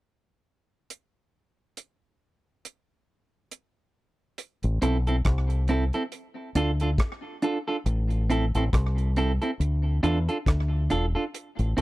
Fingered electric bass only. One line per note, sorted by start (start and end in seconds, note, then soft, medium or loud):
4.64 4.81 A1 medium
4.82 5.22 B1 medium
5.25 5.90 C2 medium
6.55 6.96 D2 medium
7.86 8.50 A1 loud
8.55 8.72 A1 medium
8.73 9.38 C2 loud
9.60 10.00 D2 medium
10.04 10.27 E2 medium
10.47 10.87 D2 loud
10.91 11.14 E1 medium
11.59 11.76 A1 medium
11.78 11.81 B1 medium